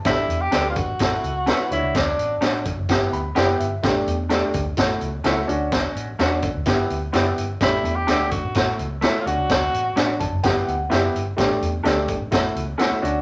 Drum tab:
HH |x-x-x-x-x-x-x-x-|x-x-x-x-x-x-x-x-|x-x-x-x-x-x-x-x-|x-x-x-x-x-x-x-x-|
SD |o---o---o---oo--|o---o---o---o---|o---o---o---o---|o---o---o---o---|
BD |o-----o-o-------|o-----o-o-------|o-----o-o-------|o-----o-o-------|

HH |x-x-x-x-x-x-x-x-|x-x-x-x-x-x-x-x-|x-x-x-x-x-x-x-x-|
SD |o---o---o---o---|o---o---o---o---|o---o---o---oo--|
BD |o-----o-o-------|o-----o-o-------|o-----o-o-------|